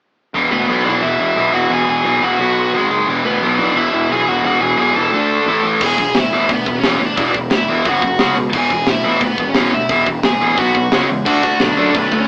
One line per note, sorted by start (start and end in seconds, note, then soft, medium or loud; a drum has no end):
0.34 0.46 E1 medium
0.34 0.67 E2 medium
0.34 0.68 B2 medium
0.34 0.68 E3 medium
0.51 0.64 D2 medium
0.51 0.83 B3 medium
0.51 0.85 B4 medium
0.68 0.93 B1 medium
0.68 0.85 E2 medium
0.68 0.84 B2 medium
0.68 0.83 E3 medium
0.85 1.01 E2 medium
0.85 1.01 B2 medium
0.85 1.02 E3 medium
0.85 1.02 D4 medium
0.85 1.03 D5 medium
1.02 1.14 E1 medium
1.02 1.35 E2 medium
1.02 1.36 B2 loud
1.02 1.36 E3 medium
1.02 1.19 E4 medium
1.02 1.19 E5 medium
1.19 1.32 E1 medium
1.19 1.52 E4 medium
1.19 1.54 E5 medium
1.36 1.49 B1 medium
1.36 1.53 E2 medium
1.36 1.53 B2 medium
1.36 1.52 E3 medium
1.53 1.65 E1 medium
1.53 1.70 E2 medium
1.53 1.71 B2 medium
1.53 1.71 E3 medium
1.53 1.70 F#4 medium
1.53 1.71 F#5 medium
1.69 1.82 E1 medium
1.69 2.03 E2 medium
1.69 2.04 B2 medium
1.69 2.05 E3 loud
1.73 1.88 G#4 medium
1.73 1.88 G#5 medium
1.88 2.00 E1 medium
1.88 2.21 G#4 medium
1.88 2.24 G#5 loud
2.04 2.17 B1 medium
2.04 2.22 E2 medium
2.04 2.22 B2 medium
2.04 2.21 E3 medium
2.21 2.34 E1 medium
2.21 2.38 E2 medium
2.21 2.38 B2 medium
2.21 2.38 E3 medium
2.21 2.87 F#4 medium
2.21 2.87 F#5 medium
2.39 2.64 B1 medium
2.39 2.72 B2 medium
2.39 2.73 F#3 loud
2.39 2.73 B3 loud
2.73 2.86 G#1 medium
2.73 2.90 G#2 medium
2.73 2.90 D#3 medium
2.73 2.90 G#3 medium
2.90 3.03 F#1 medium
2.90 3.07 G#2 medium
2.90 3.07 D#3 medium
2.90 3.09 G#3 medium
3.07 3.20 E1 medium
3.07 3.41 E2 loud
3.07 3.42 B2 medium
3.07 3.42 E3 medium
3.24 3.37 D2 medium
3.24 3.57 B3 medium
3.24 3.59 B4 medium
3.41 3.66 B1 medium
3.41 3.60 E2 medium
3.41 3.60 B2 medium
3.41 3.58 E3 medium
3.59 3.75 E2 medium
3.59 3.75 B2 medium
3.59 3.77 E3 medium
3.59 3.75 D4 medium
3.59 3.77 D5 medium
3.74 3.87 E1 medium
3.74 4.11 E2 medium
3.74 4.11 B2 medium
3.74 4.13 E3 loud
3.74 3.92 E4 medium
3.74 3.92 E5 medium
3.93 4.05 E1 medium
3.93 4.09 E4 medium
3.93 4.11 E5 medium
4.09 4.22 B1 medium
4.09 4.29 E2 medium
4.09 4.29 B2 medium
4.09 4.27 G#4 medium
4.09 4.28 G#5 medium
4.14 4.27 E3 medium
4.27 4.40 E1 medium
4.27 4.45 E2 medium
4.27 4.45 B2 medium
4.27 4.46 E3 medium
4.27 4.44 F#4 medium
4.27 4.44 F#5 medium
4.43 4.56 E1 medium
4.43 4.77 E2 medium
4.43 4.78 B2 loud
4.43 4.78 E3 medium
4.43 4.61 F#4 medium
4.43 4.61 F#5 medium
4.61 4.74 E1 medium
4.61 4.78 G#4 medium
4.61 4.77 G#5 loud
4.77 4.90 B1 medium
4.77 4.96 E2 medium
4.77 4.96 B2 medium
4.77 4.95 E3 medium
4.77 4.95 G#4 medium
4.77 4.96 G#5 medium
4.94 5.07 E1 medium
4.94 5.13 E2 medium
4.94 5.12 B2 medium
4.94 5.12 E3 medium
4.94 5.60 A4 medium
4.94 5.64 A5 medium
5.11 5.37 D2 medium
5.11 5.46 D3 medium
5.11 5.46 A3 loud
5.11 5.47 D4 medium
5.46 5.59 A1 medium
5.46 5.66 A2 medium
5.46 5.65 E3 medium
5.46 5.65 A3 loud
5.63 5.76 A1 medium
5.63 5.82 A2 medium
5.63 5.81 E3 medium
5.63 5.81 A3 medium
5.81 5.93 E1 medium
5.81 5.97 E2 medium
5.81 5.98 B2 loud
5.81 5.98 E3 medium
5.81 6.14 G#4 medium
5.81 kick loud
5.81 crash loud
5.86 6.19 G#5 medium
5.98 6.10 E1 medium
5.98 6.14 E2 medium
5.98 6.14 B2 medium
5.98 kick medium
6.15 6.28 D2 medium
6.15 6.31 E2 medium
6.15 6.31 B2 medium
6.15 6.48 E4 medium
6.15 snare loud
6.15 open hi-hat medium
6.21 6.52 E5 medium
6.32 6.45 A1 medium
6.32 6.48 E2 loud
6.32 6.48 B2 medium
6.32 6.49 E3 medium
6.49 6.61 D2 medium
6.49 6.65 E2 medium
6.49 6.66 B2 medium
6.49 6.75 B3 medium
6.49 kick loud
6.49 open hi-hat medium
6.55 6.79 B4 medium
6.66 6.78 E1 medium
6.66 6.82 E2 medium
6.66 6.82 B2 medium
6.66 kick medium
6.79 7.01 C#4 medium
6.79 7.04 C#5 medium
6.83 6.95 E1 medium
6.83 7.00 E2 medium
6.83 7.00 B2 loud
6.83 7.00 E3 loud
6.83 snare loud
6.83 open hi-hat medium
7.00 7.12 D2 medium
7.00 7.15 E2 medium
7.00 7.16 B2 medium
7.05 7.35 D4 medium
7.05 7.35 D5 medium
7.16 7.29 E1 loud
7.16 7.32 E2 medium
7.16 7.32 B2 medium
7.16 7.34 E3 loud
7.16 kick loud
7.16 open hi-hat medium
7.33 7.46 E1 medium
7.33 7.49 E2 medium
7.33 7.49 B2 medium
7.33 kick medium
7.50 7.63 D2 medium
7.50 7.66 E2 medium
7.50 7.67 B2 medium
7.50 snare loud
7.50 open hi-hat medium
7.56 7.85 E4 medium
7.56 7.86 E5 medium
7.68 7.80 E1 medium
7.68 7.85 E2 medium
7.68 7.85 B2 loud
7.68 7.85 E3 loud
7.85 7.98 F#1 medium
7.85 8.02 F#2 medium
7.85 8.02 C#3 medium
7.85 8.03 F#3 loud
7.85 8.34 F#4 medium
7.85 8.35 F#5 loud
7.85 kick loud
7.85 open hi-hat medium
8.02 8.14 F#1 medium
8.02 8.18 F#2 medium
8.02 8.18 C#3 medium
8.02 kick medium
8.18 8.31 C#2 medium
8.18 8.35 C#3 medium
8.18 8.35 G#3 loud
8.18 8.36 C#4 loud
8.18 snare loud
8.18 open hi-hat medium
8.36 8.48 B2 medium
8.36 8.52 C#3 medium
8.36 8.52 G#3 medium
8.53 8.65 E1 loud
8.53 8.70 E2 medium
8.53 8.70 B2 medium
8.53 8.71 E3 loud
8.53 8.87 G#4 medium
8.53 kick loud
8.53 crash loud
8.58 8.88 G#5 medium
8.70 8.83 E1 medium
8.70 8.86 E2 medium
8.70 8.87 B2 medium
8.70 kick medium
8.87 9.00 D2 medium
8.87 9.02 E2 medium
8.87 9.03 B2 medium
8.87 9.21 E4 medium
8.87 snare loud
8.87 open hi-hat medium
8.91 9.23 E5 loud
9.03 9.17 A1 medium
9.03 9.20 E2 medium
9.03 9.21 B2 loud
9.03 9.21 E3 loud
9.20 9.33 D2 loud
9.20 9.37 E2 medium
9.20 9.37 B2 medium
9.20 9.46 B3 medium
9.20 9.49 B4 medium
9.20 kick loud
9.20 open hi-hat medium
9.38 9.50 E1 medium
9.38 9.53 E2 medium
9.38 9.55 B2 medium
9.38 kick medium
9.49 9.72 C#4 medium
9.49 9.75 C#5 medium
9.54 9.68 E1 loud
9.54 9.71 E2 medium
9.54 9.72 B2 loud
9.54 9.72 E3 loud
9.54 snare loud
9.54 open hi-hat medium
9.73 9.85 D2 medium
9.73 9.88 E2 medium
9.73 9.89 B2 medium
9.73 10.05 E4 medium
9.73 10.06 E5 loud
9.89 10.01 E1 medium
9.89 10.05 E2 medium
9.89 10.06 B2 medium
9.89 10.07 E3 loud
9.89 kick loud
9.89 open hi-hat medium
10.06 10.18 E1 medium
10.06 10.22 E2 medium
10.06 10.22 B2 medium
10.06 kick medium
10.23 10.36 D2 medium
10.23 10.39 E2 medium
10.23 10.40 B2 medium
10.23 10.56 G#4 medium
10.23 10.60 G#5 medium
10.23 snare loud
10.23 open hi-hat medium
10.40 10.53 A1 medium
10.40 10.57 E2 medium
10.40 10.56 B2 loud
10.40 10.58 E3 loud
10.57 10.70 B1 medium
10.57 10.74 B2 medium
10.57 10.74 F#3 medium
10.57 10.75 B3 loud
10.57 11.06 F#4 medium
10.57 11.06 F#5 medium
10.57 kick loud
10.57 open hi-hat medium
10.74 10.87 B1 medium
10.74 10.91 B2 medium
10.74 10.91 F#3 medium
10.74 kick medium
10.92 11.04 C#2 medium
10.92 11.07 C#3 medium
10.92 11.08 G#3 loud
10.92 11.09 C#4 medium
10.92 snare loud
10.92 open hi-hat medium
11.09 11.21 E2 medium
11.09 11.24 C#3 medium
11.09 11.25 G#3 medium
11.26 11.38 D2 medium
11.26 11.42 D3 medium
11.26 11.42 A3 loud
11.26 11.43 D4 medium
11.26 11.58 F#4 medium
11.26 11.61 F#5 medium
11.26 kick loud
11.26 crash medium
11.43 11.55 D2 medium
11.43 11.58 D3 medium
11.43 11.59 A3 medium
11.43 kick medium
11.60 11.72 B1 medium
11.60 11.76 D3 medium
11.60 11.76 A3 medium
11.60 11.92 D4 medium
11.60 11.94 D5 medium
11.60 snare loud
11.60 open hi-hat medium
11.77 11.89 F#2 medium
11.77 11.92 D3 medium
11.77 11.94 A3 loud
11.77 11.94 D4 loud
11.94 12.07 B1 loud
11.94 12.09 D3 medium
11.94 12.10 A3 medium
11.94 12.18 B3 medium
11.94 12.19 B4 medium
11.94 kick loud
11.94 open hi-hat medium
11.99 12.28 D4 medium
12.12 12.24 D2 medium
12.12 12.27 D3 medium
12.12 12.28 A3 medium
12.12 kick medium
12.19 12.28 C#4 medium
12.19 12.28 C#5 medium